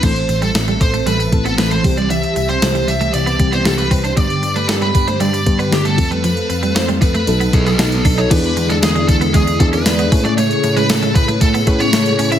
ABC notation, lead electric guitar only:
X:1
M:4/4
L:1/16
Q:1/4=116
K:Ador
V:1 name="Lead electric guitar"
c3 A3 c2 B3 A B c2 d | e3 c3 e2 d3 c A B2 c | d3 B A B2 c d3 B G A2 B- | B4 c2 B4 ^G A4 ^c |
[K:Emix] B3 A G2 A2 G2 A B4 d | c3 B A2 B2 A2 B c4 e |]